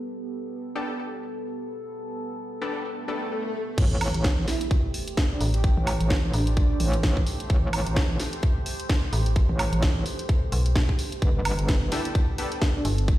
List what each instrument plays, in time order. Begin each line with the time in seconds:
Already playing: ambient pad B3 G4 A4
0.75 synth stab B3 D4 G4 A4
2.61 synth stab B3 D4 G4 A4
2.85 swell
3.08 synth stab B3 D4 G4 A4
3.78 wobble bass A1, ambient pad A3 G4 C5, kick, closed hi-hat, crash, sub drop
4.01 open hi-hat, high woodblock
4.14 wobble bass A1, closed hi-hat
4.24 kick, snare, closed hi-hat
4.48 soft synth lead E4, snare, open hi-hat
4.61 closed hi-hat
4.71 kick, closed hi-hat
4.94 open hi-hat
5.08 closed hi-hat
5.17 kick, snare, closed hi-hat
5.31 soft synth lead D4
5.41 fm bass A1, open hi-hat
5.54 soft synth lead G4, closed hi-hat
5.64 soft synth lead G4, kick, closed hi-hat
5.77 wobble bass A1
5.87 open hi-hat, high woodblock
6.01 wobble bass A1, closed hi-hat
6.10 kick, snare, closed hi-hat
6.33 fm bass A1, soft synth lead D4, open hi-hat
6.47 soft synth lead D4, closed hi-hat
6.57 soft synth lead D4, kick, closed hi-hat
6.70 soft synth lead D4
6.80 wobble bass A1, open hi-hat
6.93 closed hi-hat
7.03 kick, snare, closed hi-hat
7.17 kick
7.27 open hi-hat
7.40 closed hi-hat
7.50 wobble bass A1, kick, closed hi-hat
7.73 open hi-hat, high woodblock
7.87 wobble bass A1, closed hi-hat
7.96 kick, snare, closed hi-hat
8.20 snare, open hi-hat
8.33 closed hi-hat
8.43 kick, closed hi-hat
8.66 open hi-hat
8.80 closed hi-hat
8.89 kick, snare, closed hi-hat
9.13 fm bass A1, open hi-hat
9.26 closed hi-hat
9.36 kick, closed hi-hat
9.49 wobble bass A1
9.59 open hi-hat, high woodblock
9.73 wobble bass A1, closed hi-hat
9.82 kick, snare, closed hi-hat
10.06 open hi-hat
10.19 closed hi-hat
10.29 kick, closed hi-hat
10.52 fm bass B1, open hi-hat
10.66 closed hi-hat
10.76 kick, snare, closed hi-hat
10.89 kick
10.99 open hi-hat
11.12 closed hi-hat
11.22 wobble bass G1, ambient pad B3 A4, kick, closed hi-hat
11.45 open hi-hat, ride, high woodblock
11.59 wobble bass G1, closed hi-hat
11.69 kick, snare, closed hi-hat
11.92 synth stab B3 D4 G4 A4, soft synth lead E4, snare, open hi-hat, ride
12.05 closed hi-hat
12.15 kick, closed hi-hat
12.38 synth stab B3 D4 G4 A4, open hi-hat, ride
12.52 closed hi-hat
12.62 kick, snare, closed hi-hat
12.75 soft synth lead D4
12.85 fm bass G1, open hi-hat, ride
12.98 closed hi-hat
13.08 kick, closed hi-hat